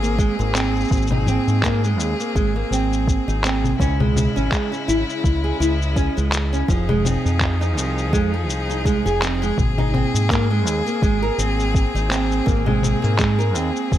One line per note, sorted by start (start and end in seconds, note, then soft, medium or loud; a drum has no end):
0.00 0.29 G#1 medium
0.00 3.76 A#3 medium
0.00 0.17 A#3 medium
0.00 3.76 C4 medium
0.00 3.76 G#4 medium
0.00 shaker soft
0.18 0.36 G#3 medium
0.18 kick loud
0.18 shaker soft
0.39 0.83 G#1 medium
0.39 0.53 A#3 medium
0.39 shaker soft
0.55 1.09 C4 medium
0.55 clap medium
0.55 shaker medium
0.76 shaker soft
0.80 shaker soft
0.84 shaker soft
0.88 1.37 G#1 medium
0.88 kick loud
0.88 shaker soft
0.92 shaker soft
0.96 shaker soft
1.02 shaker soft
1.07 low conga medium
1.07 shaker soft
1.12 1.25 D#4 medium
1.27 1.62 C4 medium
1.27 low conga medium
1.27 shaker medium
1.47 1.99 G#2 medium
1.47 shaker soft
1.63 1.82 A#3 medium
1.63 kick loud
1.63 clap medium
1.63 shaker soft
1.84 2.18 G#3 medium
1.84 shaker soft
1.99 2.13 D#2 medium
1.99 shaker medium
2.20 2.34 A#3 medium
2.20 shaker soft
2.35 2.62 G#1 medium
2.35 2.54 G#3 medium
2.35 kick loud
2.35 shaker soft
2.56 2.70 A#3 medium
2.70 3.17 G#1 medium
2.70 3.26 C4 medium
2.70 shaker medium
2.93 shaker soft
3.08 kick loud
3.08 shaker soft
3.28 3.72 G#1 medium
3.28 3.42 D#4 medium
3.28 shaker soft
3.44 3.78 C4 medium
3.44 clap medium
3.44 shaker medium
3.64 low conga medium
3.64 shaker soft
3.80 4.26 C#2 medium
3.80 6.66 C#3 medium
3.80 6.66 G#3 medium
3.80 3.98 C#4 medium
3.80 6.66 E4 medium
3.80 kick medium
3.80 shaker soft
4.00 4.34 G#3 medium
4.00 low conga medium
4.16 low conga medium
4.16 shaker medium
4.36 4.47 G#1 medium
4.36 4.50 C#4 medium
4.36 shaker soft
4.52 4.70 G#3 medium
4.52 kick loud
4.52 clap medium
4.52 shaker soft
4.72 4.86 C#4 medium
4.72 shaker soft
4.88 5.02 G#1 medium
4.88 5.42 E4 medium
4.88 shaker medium
5.10 shaker soft
5.24 5.51 C#2 medium
5.24 kick loud
5.24 shaker soft
5.44 5.58 G#4 medium
5.60 6.07 C#2 medium
5.60 5.95 E4 medium
5.60 shaker medium
5.82 shaker soft
5.96 6.15 C#4 medium
5.96 kick loud
5.96 shaker soft
6.17 6.61 C#2 medium
6.17 6.51 G#3 medium
6.17 shaker soft
6.32 clap medium
6.32 shaker medium
6.53 6.67 C#4 medium
6.53 shaker soft
6.68 7.15 F1 loud
6.68 6.87 F3 medium
6.68 9.55 F3 medium
6.68 9.55 D#4 medium
6.68 13.98 G#4 medium
6.68 kick loud
6.68 shaker soft
6.89 7.03 G#3 medium
6.89 low conga medium
7.05 7.59 C4 medium
7.05 low conga medium
7.05 shaker medium
7.25 7.77 F2 medium
7.25 shaker soft
7.41 kick loud
7.41 clap medium
7.41 shaker soft
7.61 7.75 D#4 medium
7.61 shaker soft
7.77 8.13 C2 medium
7.77 8.12 C4 medium
7.77 shaker medium
7.98 shaker soft
8.13 8.49 F2 medium
8.13 8.31 G#3 medium
8.13 kick loud
8.13 shaker soft
8.34 8.48 F3 medium
8.49 9.07 C2 medium
8.49 shaker medium
8.69 8.84 D#4 medium
8.69 shaker soft
8.85 9.04 G#3 medium
8.85 kick loud
8.85 shaker soft
9.06 9.50 F1 medium
9.06 9.20 G#4 medium
9.06 shaker soft
9.22 9.41 C4 loud
9.22 clap medium
9.22 shaker medium
9.42 9.56 G#3 medium
9.42 shaker soft
9.58 10.05 G#1 medium
9.58 13.98 A#3 medium
9.58 13.98 C4 medium
9.58 kick loud
9.58 low conga medium
9.58 shaker soft
9.78 9.93 D#4 medium
9.78 low conga medium
9.94 10.29 C4 medium
9.94 low conga medium
10.14 10.67 G#2 medium
10.14 shaker medium
10.30 10.49 A#3 medium
10.30 kick medium
10.30 clap medium
10.30 shaker soft
10.51 10.85 G#3 medium
10.67 10.81 D#2 medium
10.67 shaker medium
10.86 11.01 A#3 medium
10.86 shaker soft
11.02 11.29 G#1 medium
11.02 11.21 G#3 medium
11.02 kick medium
11.02 shaker soft
11.22 11.37 A#4 medium
11.38 11.85 G#1 medium
11.38 11.93 C4 medium
11.38 shaker medium
11.60 shaker soft
11.75 kick loud
11.75 shaker soft
11.94 12.39 G#1 medium
11.94 12.09 D#4 medium
11.94 shaker soft
12.10 12.45 C4 medium
12.10 clap medium
12.10 shaker medium
12.32 shaker soft
12.46 12.94 G#1 medium
12.46 12.65 A#3 medium
12.46 kick loud
12.46 shaker soft
12.66 13.01 G#3 medium
12.66 low conga medium
12.83 low conga medium
12.83 shaker medium
13.02 13.55 G#2 medium
13.02 13.17 A#3 medium
13.02 shaker soft
13.19 13.37 G#3 medium
13.19 kick medium
13.19 clap medium
13.19 shaker soft
13.39 13.53 A#4 medium
13.39 shaker soft
13.55 13.70 D#2 medium
13.55 13.98 C4 medium
13.55 shaker medium
13.76 shaker soft
13.92 13.98 G#1 medium
13.92 kick loud
13.92 shaker soft